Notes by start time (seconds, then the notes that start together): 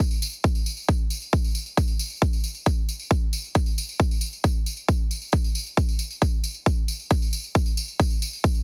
0.11 tambourine
0.22 tambourine
0.33 tambourine
0.44 kick, tambourine
0.55 tambourine
0.66 tambourine
0.77 tambourine
0.88 kick, tambourine
1.10 tambourine
1.22 tambourine
1.33 kick, tambourine
1.44 tambourine
1.55 tambourine
1.66 tambourine
1.77 kick, tambourine
1.88 tambourine
1.99 tambourine
2.10 tambourine
2.22 kick, tambourine
2.33 tambourine
2.44 tambourine
2.55 tambourine
2.66 kick, tambourine
2.89 tambourine
2.99 tambourine
3.11 kick, tambourine
3.33 tambourine
3.44 tambourine
3.55 kick, tambourine
3.66 tambourine
3.78 tambourine
3.89 tambourine
4.00 kick, tambourine
4.11 tambourine
4.21 tambourine
4.33 tambourine
4.44 kick, tambourine
4.66 tambourine
4.77 tambourine
4.88 kick, tambourine
5.11 tambourine
5.22 tambourine
5.32 kick, tambourine
5.44 tambourine
5.55 tambourine
5.67 tambourine
5.77 kick, tambourine
5.89 tambourine
5.99 tambourine
6.10 tambourine
6.21 kick, tambourine
6.44 tambourine
6.54 tambourine
6.66 kick, tambourine
6.88 tambourine
7.00 tambourine
7.10 kick, tambourine
7.22 tambourine
7.33 tambourine
7.44 tambourine
7.55 kick, tambourine
7.66 tambourine
7.77 tambourine
7.88 tambourine
8.00 kick, tambourine
8.10 tambourine
8.22 tambourine
8.33 tambourine
8.44 kick, tambourine
8.55 tambourine